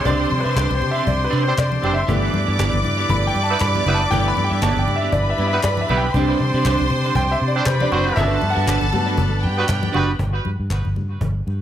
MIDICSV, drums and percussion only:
0, 0, Header, 1, 3, 480
1, 0, Start_track
1, 0, Key_signature, 1, "major"
1, 0, Tempo, 507185
1, 56, Time_signature, 4, 2, 24, 8
1, 10993, End_track
2, 0, Start_track
2, 0, Title_t, "Cajon"
2, 51, Note_on_c, 9, 36, 117
2, 145, Note_off_c, 9, 36, 0
2, 181, Note_on_c, 9, 38, 38
2, 185, Note_off_c, 9, 38, 0
2, 185, Note_on_c, 9, 38, 19
2, 279, Note_off_c, 9, 38, 0
2, 533, Note_on_c, 9, 36, 96
2, 539, Note_on_c, 9, 38, 100
2, 628, Note_off_c, 9, 36, 0
2, 634, Note_off_c, 9, 38, 0
2, 667, Note_on_c, 9, 38, 20
2, 762, Note_off_c, 9, 38, 0
2, 779, Note_on_c, 9, 38, 27
2, 874, Note_off_c, 9, 38, 0
2, 1013, Note_on_c, 9, 36, 95
2, 1107, Note_off_c, 9, 36, 0
2, 1496, Note_on_c, 9, 36, 108
2, 1500, Note_on_c, 9, 38, 99
2, 1591, Note_off_c, 9, 36, 0
2, 1594, Note_off_c, 9, 38, 0
2, 1638, Note_on_c, 9, 38, 21
2, 1733, Note_off_c, 9, 38, 0
2, 1973, Note_on_c, 9, 36, 103
2, 2068, Note_off_c, 9, 36, 0
2, 2452, Note_on_c, 9, 36, 84
2, 2455, Note_on_c, 9, 38, 102
2, 2546, Note_off_c, 9, 36, 0
2, 2550, Note_off_c, 9, 38, 0
2, 2691, Note_on_c, 9, 38, 31
2, 2785, Note_off_c, 9, 38, 0
2, 2928, Note_on_c, 9, 36, 116
2, 3023, Note_off_c, 9, 36, 0
2, 3176, Note_on_c, 9, 38, 35
2, 3271, Note_off_c, 9, 38, 0
2, 3416, Note_on_c, 9, 36, 112
2, 3418, Note_on_c, 9, 38, 99
2, 3511, Note_off_c, 9, 36, 0
2, 3513, Note_off_c, 9, 38, 0
2, 3895, Note_on_c, 9, 36, 117
2, 3990, Note_off_c, 9, 36, 0
2, 4375, Note_on_c, 9, 36, 97
2, 4381, Note_on_c, 9, 38, 96
2, 4469, Note_off_c, 9, 36, 0
2, 4476, Note_off_c, 9, 38, 0
2, 4614, Note_on_c, 9, 38, 31
2, 4709, Note_off_c, 9, 38, 0
2, 4851, Note_on_c, 9, 36, 106
2, 4945, Note_off_c, 9, 36, 0
2, 5335, Note_on_c, 9, 36, 111
2, 5335, Note_on_c, 9, 38, 101
2, 5430, Note_off_c, 9, 36, 0
2, 5430, Note_off_c, 9, 38, 0
2, 5707, Note_on_c, 9, 38, 31
2, 5802, Note_off_c, 9, 38, 0
2, 5812, Note_on_c, 9, 36, 110
2, 5907, Note_off_c, 9, 36, 0
2, 6294, Note_on_c, 9, 36, 92
2, 6304, Note_on_c, 9, 38, 92
2, 6389, Note_off_c, 9, 36, 0
2, 6399, Note_off_c, 9, 38, 0
2, 6768, Note_on_c, 9, 36, 106
2, 6863, Note_off_c, 9, 36, 0
2, 7007, Note_on_c, 9, 38, 35
2, 7102, Note_off_c, 9, 38, 0
2, 7247, Note_on_c, 9, 38, 118
2, 7252, Note_on_c, 9, 36, 118
2, 7341, Note_off_c, 9, 38, 0
2, 7346, Note_off_c, 9, 36, 0
2, 7732, Note_on_c, 9, 36, 112
2, 7827, Note_off_c, 9, 36, 0
2, 8212, Note_on_c, 9, 36, 98
2, 8221, Note_on_c, 9, 38, 105
2, 8306, Note_off_c, 9, 36, 0
2, 8316, Note_off_c, 9, 38, 0
2, 8455, Note_on_c, 9, 38, 32
2, 8550, Note_off_c, 9, 38, 0
2, 8686, Note_on_c, 9, 36, 101
2, 8781, Note_off_c, 9, 36, 0
2, 8928, Note_on_c, 9, 38, 40
2, 9022, Note_off_c, 9, 38, 0
2, 9170, Note_on_c, 9, 36, 103
2, 9170, Note_on_c, 9, 38, 104
2, 9264, Note_off_c, 9, 38, 0
2, 9265, Note_off_c, 9, 36, 0
2, 9304, Note_on_c, 9, 38, 21
2, 9398, Note_off_c, 9, 38, 0
2, 9538, Note_on_c, 9, 38, 31
2, 9633, Note_off_c, 9, 38, 0
2, 9647, Note_on_c, 9, 36, 108
2, 9742, Note_off_c, 9, 36, 0
2, 9886, Note_on_c, 9, 38, 30
2, 9981, Note_off_c, 9, 38, 0
2, 10018, Note_on_c, 9, 38, 23
2, 10113, Note_off_c, 9, 38, 0
2, 10130, Note_on_c, 9, 36, 79
2, 10225, Note_off_c, 9, 36, 0
2, 10370, Note_on_c, 9, 38, 27
2, 10465, Note_off_c, 9, 38, 0
2, 10504, Note_on_c, 9, 38, 26
2, 10599, Note_off_c, 9, 38, 0
2, 10609, Note_on_c, 9, 36, 99
2, 10703, Note_off_c, 9, 36, 0
2, 10850, Note_on_c, 9, 38, 31
2, 10945, Note_off_c, 9, 38, 0
2, 10993, End_track
3, 0, Start_track
3, 0, Title_t, "Drums"
3, 56, Note_on_c, 9, 64, 63
3, 151, Note_off_c, 9, 64, 0
3, 294, Note_on_c, 9, 63, 73
3, 388, Note_off_c, 9, 63, 0
3, 535, Note_on_c, 9, 62, 38
3, 541, Note_on_c, 9, 39, 90
3, 629, Note_off_c, 9, 62, 0
3, 636, Note_off_c, 9, 39, 0
3, 670, Note_on_c, 9, 63, 69
3, 764, Note_off_c, 9, 63, 0
3, 773, Note_on_c, 9, 62, 31
3, 773, Note_on_c, 9, 64, 70
3, 868, Note_off_c, 9, 62, 0
3, 868, Note_off_c, 9, 64, 0
3, 1012, Note_on_c, 9, 62, 33
3, 1012, Note_on_c, 9, 63, 71
3, 1107, Note_off_c, 9, 62, 0
3, 1107, Note_off_c, 9, 63, 0
3, 1260, Note_on_c, 9, 62, 39
3, 1355, Note_off_c, 9, 62, 0
3, 1497, Note_on_c, 9, 39, 101
3, 1498, Note_on_c, 9, 62, 39
3, 1591, Note_off_c, 9, 39, 0
3, 1593, Note_off_c, 9, 62, 0
3, 1626, Note_on_c, 9, 63, 80
3, 1720, Note_off_c, 9, 63, 0
3, 1738, Note_on_c, 9, 62, 37
3, 1738, Note_on_c, 9, 64, 78
3, 1832, Note_off_c, 9, 62, 0
3, 1832, Note_off_c, 9, 64, 0
3, 1975, Note_on_c, 9, 64, 75
3, 2069, Note_off_c, 9, 64, 0
3, 2213, Note_on_c, 9, 62, 32
3, 2213, Note_on_c, 9, 63, 69
3, 2307, Note_off_c, 9, 62, 0
3, 2307, Note_off_c, 9, 63, 0
3, 2458, Note_on_c, 9, 39, 95
3, 2460, Note_on_c, 9, 62, 39
3, 2552, Note_off_c, 9, 39, 0
3, 2555, Note_off_c, 9, 62, 0
3, 2585, Note_on_c, 9, 63, 67
3, 2680, Note_off_c, 9, 63, 0
3, 2693, Note_on_c, 9, 64, 69
3, 2788, Note_off_c, 9, 64, 0
3, 2933, Note_on_c, 9, 63, 76
3, 3027, Note_off_c, 9, 63, 0
3, 3179, Note_on_c, 9, 62, 40
3, 3274, Note_off_c, 9, 62, 0
3, 3407, Note_on_c, 9, 39, 91
3, 3501, Note_off_c, 9, 39, 0
3, 3553, Note_on_c, 9, 63, 73
3, 3647, Note_off_c, 9, 63, 0
3, 3655, Note_on_c, 9, 64, 82
3, 3750, Note_off_c, 9, 64, 0
3, 3900, Note_on_c, 9, 64, 71
3, 3994, Note_off_c, 9, 64, 0
3, 4135, Note_on_c, 9, 62, 30
3, 4135, Note_on_c, 9, 63, 73
3, 4230, Note_off_c, 9, 62, 0
3, 4230, Note_off_c, 9, 63, 0
3, 4377, Note_on_c, 9, 39, 92
3, 4382, Note_on_c, 9, 62, 42
3, 4471, Note_off_c, 9, 39, 0
3, 4477, Note_off_c, 9, 62, 0
3, 4511, Note_on_c, 9, 63, 70
3, 4605, Note_off_c, 9, 63, 0
3, 4617, Note_on_c, 9, 62, 32
3, 4617, Note_on_c, 9, 64, 73
3, 4711, Note_off_c, 9, 62, 0
3, 4711, Note_off_c, 9, 64, 0
3, 4848, Note_on_c, 9, 63, 69
3, 4943, Note_off_c, 9, 63, 0
3, 5094, Note_on_c, 9, 62, 36
3, 5188, Note_off_c, 9, 62, 0
3, 5329, Note_on_c, 9, 39, 96
3, 5338, Note_on_c, 9, 62, 37
3, 5423, Note_off_c, 9, 39, 0
3, 5433, Note_off_c, 9, 62, 0
3, 5464, Note_on_c, 9, 63, 77
3, 5558, Note_off_c, 9, 63, 0
3, 5575, Note_on_c, 9, 62, 37
3, 5575, Note_on_c, 9, 64, 77
3, 5670, Note_off_c, 9, 62, 0
3, 5670, Note_off_c, 9, 64, 0
3, 5816, Note_on_c, 9, 64, 71
3, 5910, Note_off_c, 9, 64, 0
3, 6048, Note_on_c, 9, 63, 67
3, 6143, Note_off_c, 9, 63, 0
3, 6295, Note_on_c, 9, 62, 40
3, 6297, Note_on_c, 9, 39, 100
3, 6390, Note_off_c, 9, 62, 0
3, 6392, Note_off_c, 9, 39, 0
3, 6424, Note_on_c, 9, 63, 72
3, 6519, Note_off_c, 9, 63, 0
3, 6532, Note_on_c, 9, 64, 68
3, 6627, Note_off_c, 9, 64, 0
3, 6771, Note_on_c, 9, 63, 76
3, 6866, Note_off_c, 9, 63, 0
3, 7250, Note_on_c, 9, 39, 105
3, 7260, Note_on_c, 9, 62, 41
3, 7344, Note_off_c, 9, 39, 0
3, 7355, Note_off_c, 9, 62, 0
3, 7385, Note_on_c, 9, 63, 86
3, 7480, Note_off_c, 9, 63, 0
3, 7495, Note_on_c, 9, 62, 37
3, 7495, Note_on_c, 9, 64, 78
3, 7590, Note_off_c, 9, 62, 0
3, 7590, Note_off_c, 9, 64, 0
3, 7735, Note_on_c, 9, 64, 75
3, 7830, Note_off_c, 9, 64, 0
3, 7964, Note_on_c, 9, 62, 34
3, 7964, Note_on_c, 9, 63, 68
3, 8059, Note_off_c, 9, 62, 0
3, 8059, Note_off_c, 9, 63, 0
3, 8209, Note_on_c, 9, 62, 44
3, 8216, Note_on_c, 9, 39, 105
3, 8304, Note_off_c, 9, 62, 0
3, 8311, Note_off_c, 9, 39, 0
3, 8340, Note_on_c, 9, 63, 70
3, 8435, Note_off_c, 9, 63, 0
3, 8449, Note_on_c, 9, 62, 37
3, 8449, Note_on_c, 9, 64, 66
3, 8543, Note_off_c, 9, 62, 0
3, 8543, Note_off_c, 9, 64, 0
3, 8683, Note_on_c, 9, 62, 36
3, 8683, Note_on_c, 9, 63, 81
3, 8777, Note_off_c, 9, 62, 0
3, 8777, Note_off_c, 9, 63, 0
3, 8928, Note_on_c, 9, 62, 35
3, 9022, Note_off_c, 9, 62, 0
3, 9167, Note_on_c, 9, 39, 100
3, 9261, Note_off_c, 9, 39, 0
3, 9302, Note_on_c, 9, 63, 90
3, 9397, Note_off_c, 9, 63, 0
3, 9409, Note_on_c, 9, 64, 78
3, 9504, Note_off_c, 9, 64, 0
3, 9652, Note_on_c, 9, 64, 56
3, 9747, Note_off_c, 9, 64, 0
3, 9890, Note_on_c, 9, 63, 69
3, 9984, Note_off_c, 9, 63, 0
3, 10134, Note_on_c, 9, 39, 85
3, 10229, Note_off_c, 9, 39, 0
3, 10267, Note_on_c, 9, 63, 63
3, 10361, Note_off_c, 9, 63, 0
3, 10375, Note_on_c, 9, 64, 62
3, 10470, Note_off_c, 9, 64, 0
3, 10618, Note_on_c, 9, 62, 27
3, 10618, Note_on_c, 9, 63, 74
3, 10713, Note_off_c, 9, 62, 0
3, 10713, Note_off_c, 9, 63, 0
3, 10860, Note_on_c, 9, 62, 34
3, 10954, Note_off_c, 9, 62, 0
3, 10993, End_track
0, 0, End_of_file